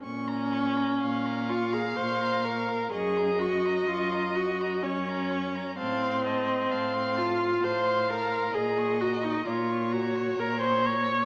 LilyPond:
<<
  \new Staff \with { instrumentName = "Violin" } { \time 3/4 \key bes \minor \tempo 4 = 64 des'''16 bes''16 des'''16 bes''16 des'''16 bes''16 des'''16 bes''16 des'''16 bes''16 des'''16 bes''16 | des'''16 bes''16 des'''16 bes''16 des'''16 bes''16 des'''16 bes''16 des'''16 bes''16 des'''16 bes''16 | a''16 c'''16 a''16 c'''16 a''16 c'''16 a''16 c'''16 a''16 c'''16 a''16 c'''16 | bes''16 des'''16 bes''16 des'''16 bes''16 des'''16 bes''16 des'''16 bes''16 des'''16 bes''16 des'''16 | }
  \new Staff \with { instrumentName = "Violin" } { \time 3/4 \key bes \minor r4 f''2 | ees''2 des''4 | f''8 ees''8 f''4 f''4 | ees''4 des''2 | }
  \new Staff \with { instrumentName = "Viola" } { \time 3/4 \key bes \minor des'4. f'16 aes'16 c''8 bes'8 | aes'8 ges'8 f'8 ges'8 des'4 | c'4. f'8 c''8 bes'8 | aes'8 ges'16 ees'16 f'8 ges'8 bes'16 c''16 des''8 | }
  \new Staff \with { instrumentName = "Cello" } { \clef bass \time 3/4 \key bes \minor bes,4 bes,4 bes,4 | ges,4 ges,4 ges,4 | a,4 a,4 a,4 | bes,4 bes,4 bes,4 | }
>>